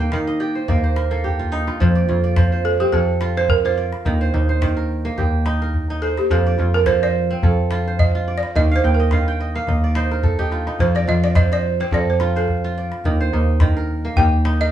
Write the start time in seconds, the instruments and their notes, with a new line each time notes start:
Already playing: kora D#3 C4 F4 G4 A#4, balafon G4
0.00 kora A#3 G5
0.12 analog synth bass D#3, kora F5, calabash thump, calabash click
0.27 kora D#5, calabash click
0.40 kora G4 D5
0.55 kora C5
0.68 analog synth bass D#2, kora A#3 D5, calabash thump
0.84 kora C5, calabash click
0.96 kora A#4, calabash click
1.11 kora A#3 A4, calabash click
1.24 kora G4, calabash thump
1.39 kora F4, calabash thump
1.52 kora D#4, calabash click
1.67 kora F4, calabash click
1.80 analog synth bass F2, kora F3, calabash thump
1.95 kora D5
2.09 analog synth bass F2, kora F4, calabash click
2.24 kora D5
2.36 kora F3, calabash thump, calabash click
2.52 kora C5
2.65 balafon A4
2.80 kora C4, balafon G4
2.93 analog synth bass F2, balafon A4, kora A4, calabash thump
3.21 kora F4, calabash click
3.37 kora C5, balafon C5
3.49 balafon A#4, calabash thump
3.65 kora F4, balafon C5
3.78 kora D5
3.93 calabash click
4.05 analog synth bass D#2, kora D#3, calabash thump
4.21 kora C5
4.34 analog synth bass D#2, kora D#4
4.49 kora C5
4.62 kora D#3, calabash thump, calabash click
4.77 kora A#4
5.05 kora A#3
5.18 analog synth bass D#2, kora G4, calabash thump
5.46 kora D#4, calabash click
5.62 kora A#4
5.74 calabash thump
5.90 kora D#4
6.02 balafon A4, kora C5
6.17 balafon G4, calabash click
6.30 analog synth bass F2, kora F3, balafon A4, calabash thump
6.46 kora D5
6.58 analog synth bass F2, kora F4, calabash click
6.74 balafon A#4, kora D5
6.86 kora F3, balafon C5, calabash thump, calabash click
7.03 kora C5, balafon D5
7.31 kora C4
7.43 analog synth bass F2, kora A4, calabash thump
7.71 kora F4, calabash click
7.88 kora C5
7.99 balafon D#5, calabash thump
8.15 kora F4
8.28 kora D5
8.38 balafon D5
8.43 calabash click
8.55 analog synth bass D#2, kora D#3, balafon D#5, calabash thump
8.71 kora F5
8.76 balafon C5
8.84 analog synth bass D#2, kora G5
8.94 balafon A#4
9.00 kora D#5
9.11 kora D#3 F5, calabash thump, calabash click
9.27 kora G5, calabash click
9.40 kora D#5, calabash click
9.55 kora A#3 F5, calabash click
9.67 analog synth bass D#2, kora D#5, calabash thump, calabash click
9.84 kora D5
9.95 kora D#4 C5, calabash click
10.11 kora A#4, calabash click
10.23 kora A4, calabash thump, calabash click
10.39 kora D#4 G4, calabash thump
10.52 kora F4, calabash click
10.67 kora D#4, calabash click
10.79 analog synth bass F2, kora F3, balafon C5, calabash thump
10.95 kora D5, balafon D5
11.07 analog synth bass F2, kora F4, balafon D#5, calabash click
11.23 kora D5, balafon D5
11.35 kora F3, balafon D#5, calabash thump, calabash click
11.52 kora C5, balafon D5
11.80 kora C4, balafon C5
11.91 analog synth bass F2, kora A4, balafon D5, calabash thump
12.10 balafon C5
12.20 kora F4, calabash click
12.36 balafon A4, kora C5
12.48 calabash thump
12.64 kora F4
12.78 kora D5
12.92 calabash click
13.04 analog synth bass D#2, kora D#3, calabash thump
13.21 kora C5
13.32 analog synth bass D#2, kora D#4, calabash click
13.60 kora D#3, calabash thump, calabash click
13.77 kora A#4
14.05 kora A#3
14.16 analog synth bass D#2, kora G4, balafon G5, calabash thump
14.45 kora D#4, calabash click
14.61 kora A#4, balafon D#5